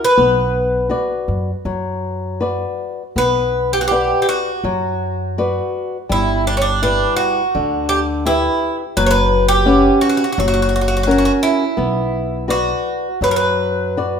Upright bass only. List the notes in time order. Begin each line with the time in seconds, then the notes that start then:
0.18 B1
1.28 F#2
1.65 F#2
3.16 B1
4.64 F#2
6.10 G1
7.55 D2
8.97 F#1
10.38 F#1
11.78 B1
13.21 F#2